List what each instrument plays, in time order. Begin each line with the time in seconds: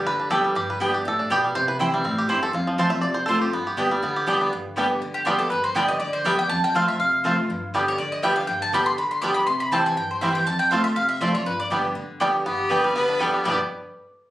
Already playing: five-string banjo G3 D4 G4
0.07 steel-string acoustic guitar D3, five-string banjo B4
0.19 five-string banjo D4
0.30 steel-string acoustic guitar D3 G3 B3 G4, mandolin B3 G4 D5 G5, five-string banjo A4
0.44 five-string banjo G3
0.55 steel-string acoustic guitar G2, five-string banjo G4
0.70 five-string banjo B4
0.80 steel-string acoustic guitar D3 G3 B3 G4, mandolin B3 G4 D5 G5, five-string banjo D4
0.94 steel-string acoustic guitar B3 G4, five-string banjo G4
1.05 steel-string acoustic guitar A2, five-string banjo A4
1.19 five-string banjo D4
1.30 steel-string acoustic guitar B2, mandolin B3 G4 D5 G5, five-string banjo G4
1.44 five-string banjo G3
1.55 steel-string acoustic guitar C3, five-string banjo C5
1.68 five-string banjo B4
1.79 steel-string acoustic guitar E3 G3 C4 E4, mandolin C4 E4 C5 G5, five-string banjo E4
1.92 five-string banjo G3, steel-string acoustic guitar C4 E4
2.04 steel-string acoustic guitar A2, five-string banjo C4
2.18 five-string banjo G4
2.29 steel-string acoustic guitar G2, mandolin C4 E4 C5 G5, five-string banjo E4
2.43 five-string banjo A4
2.53 steel-string acoustic guitar F2, five-string banjo F4
2.67 five-string banjo F3
2.78 steel-string acoustic guitar F3 A3 C4 F4, mandolin C4 F4 C5 A5, five-string banjo C4
2.90 steel-string acoustic guitar C4 F4, five-string banjo E5
3.01 steel-string acoustic guitar C3, five-string banjo D5
3.14 five-string banjo C5
3.26 steel-string acoustic guitar F3 A3 C4 F4, mandolin C4 F4 C5 A5, five-string banjo A4
3.41 steel-string acoustic guitar C4 F4, five-string banjo G4
3.53 steel-string acoustic guitar G2, five-string banjo B3
3.67 five-string banjo G4
3.77 steel-string acoustic guitar D3 G3 B3 G4, mandolin B3 G4 D5 G5, five-string banjo D4
3.91 five-string banjo G3, steel-string acoustic guitar B3 G4
4.03 steel-string acoustic guitar D3, five-string banjo B3
4.16 five-string banjo G4
4.26 steel-string acoustic guitar D3 G3 B3 G4, mandolin B3 G4 D5 G5, five-string banjo D4
4.41 five-string banjo B3
4.53 steel-string acoustic guitar G2
4.76 steel-string acoustic guitar D3 G3 B3 G4, five-string banjo G3 B3 D4, mandolin B3 G4 D5 G5
5.02 steel-string acoustic guitar D3
5.14 mandolin G4
5.25 steel-string acoustic guitar D3 G3 B3 G4, five-string banjo G3 B3 D4, mandolin B3 F4 G4 D5 G5
5.39 steel-string acoustic guitar B3 G4, mandolin A4
5.50 steel-string acoustic guitar G2, mandolin B4
5.64 mandolin C5
5.75 steel-string acoustic guitar D3 G3 B3 G4, five-string banjo G3 B3 D4, mandolin B3 G4 D5 G5
5.88 mandolin D#5
6.00 steel-string acoustic guitar D3, mandolin D5
6.13 mandolin C5
6.24 steel-string acoustic guitar D3 G3 B3 G4, five-string banjo G3 B3 D4, mandolin B3 G4 D5 E5 G5
6.38 steel-string acoustic guitar B3 G4, mandolin G5
6.49 steel-string acoustic guitar F2, mandolin A5
6.64 mandolin G5
6.74 steel-string acoustic guitar F3 A3 C4 F4, five-string banjo A3 C4 F4, mandolin C4 F4 C5 F5 A5
6.88 mandolin E5
7.00 steel-string acoustic guitar C3, mandolin F5
7.24 steel-string acoustic guitar F3 A3 C4 F4, five-string banjo A3 C4 F4, mandolin C4 F4 C5 A5
7.50 steel-string acoustic guitar G2
7.74 steel-string acoustic guitar D3 G3 B3 G4, five-string banjo G3 B3 D4, mandolin B3 G4 D5 G5
7.88 mandolin C#5
7.98 steel-string acoustic guitar D3, mandolin D5
8.12 mandolin D#5
8.23 steel-string acoustic guitar D3 G3 B3 G4, five-string banjo G3 B3 D4, mandolin B3 G4 D5 E5 G5
8.36 mandolin F5
8.47 steel-string acoustic guitar G2, mandolin G5
8.62 mandolin A5
8.72 steel-string acoustic guitar D3 G3 B3 G4, five-string banjo G3 B3 D4, mandolin B3 G4 D5 G5 B5
8.86 mandolin C6
8.98 steel-string acoustic guitar D3, mandolin B5
9.11 mandolin C6
9.22 steel-string acoustic guitar D3 G3 B3 G4, five-string banjo G3 B3 D4, mandolin B3 G4 D5 G5 D6
9.34 mandolin B5
9.47 steel-string acoustic guitar C3, mandolin C6
9.60 mandolin B5
9.71 steel-string acoustic guitar E3 G3 C4 E4, five-string banjo G3 C4 E4, mandolin C4 E4 C5 G5 A5
9.86 mandolin G#5
9.97 steel-string acoustic guitar G2, mandolin G5
10.11 mandolin C5
10.21 steel-string acoustic guitar E3 G3 C4 E4, five-string banjo G3 C4 E4, mandolin C4 E4 C5 E5 G5
10.35 mandolin G5
10.46 steel-string acoustic guitar F2, mandolin A5
10.59 mandolin G5
10.71 steel-string acoustic guitar F3 A3 C4 F4, five-string banjo A3 C4 F4, mandolin C4 F4 C5 F5 A5
10.84 mandolin E5
10.96 steel-string acoustic guitar C3, mandolin F5
11.09 mandolin E5
11.21 steel-string acoustic guitar F3 A3 C4 F4, five-string banjo A3 C4 F4, mandolin C4 F4 C5 D5 A5
11.34 steel-string acoustic guitar C4 F4, mandolin C#5
11.46 steel-string acoustic guitar G2, mandolin B4
11.60 mandolin D5
11.70 steel-string acoustic guitar D3 G3 B3 G4, five-string banjo G3 B3 D4, mandolin B3 G4 D5 G5
11.95 steel-string acoustic guitar D3
12.20 steel-string acoustic guitar D3 G3 B3 G4, five-string banjo G3 B3 D4, mandolin B3 G4 D5 G5
12.45 steel-string acoustic guitar G2, five-string banjo B3, fiddle G4
12.69 steel-string acoustic guitar D3 G3 B3 G4, mandolin B3 G4 D5 G5, five-string banjo D4, fiddle B4
12.84 five-string banjo G3, steel-string acoustic guitar B3 G4
12.95 steel-string acoustic guitar D3, five-string banjo B3, fiddle B4
13.09 five-string banjo D4
13.20 steel-string acoustic guitar D3 G3 B3 G4, five-string banjo G3, mandolin B3 G4 D5 G5, fiddle A4
13.33 five-string banjo B3, fiddle G4
13.44 steel-string acoustic guitar G2 B2 D3 G3 B3 G4, five-string banjo G3 B3, mandolin B3 G4 D5 G5, fiddle B4
13.50 five-string banjo D4 G4